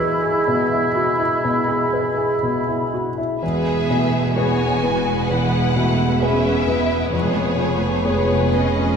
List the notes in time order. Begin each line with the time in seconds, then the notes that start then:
Already playing: E2 G#3 E4 G#4 B5
0.00 B4
0.23 G#4
0.48 B2
0.72 E4
0.96 F#4
1.19 E4
1.45 B2
1.68 G#4
1.93 B4
2.18 G#4
2.43 B2
2.68 E4
2.94 F#4
3.18 E4
3.42 E1 E2 G#3 B3 G#4 B4 E5
3.90 B2 A3
4.36 G#3 B3 F#4 G#4 B4 C#5 G#5
4.83 B3 B4
5.28 E2 B3 E4 F#5
5.75 B2 A3
6.20 G#3 B3 C#4 E4 G#4 B4 E5
6.67 B3
7.13 F1 F2 G#3 G#4 B4 C#5
7.58 F3 A3
8.05 G#3 B3 G#4 C#5
8.52 B3 C#4 D#5